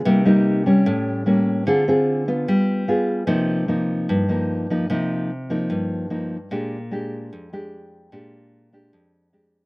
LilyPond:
\new Staff \with { instrumentName = "Nylon-string guitar" } { \time 4/4 \key c \minor \tempo 4 = 149 << { <g bes ees'>8 <g bes ees'>4 <g des'>4. <g bes cis'>4 | <c' f' aes'>8 <c' f' aes'>4 <b f'>4. <b f' aes'>4 | <f bes ees'>4 <f bes ees'>4. <f bes ees'>4 <f bes ees'>8 | <f bes ees'>4 r8 <f bes ees'>4. <f bes ees'>8 r8 |
<aes d' g'>8 r8 <aes d' g'>4. <aes d' g'>4. | <aes d' g'>4. <aes d' g'>4. <aes d' g'>4 | } \\ { c2 a,2 | d2 g2 | c2 g,2 | c2 g,2 |
bes,2 f,2 | bes,2 f,2 | } >> }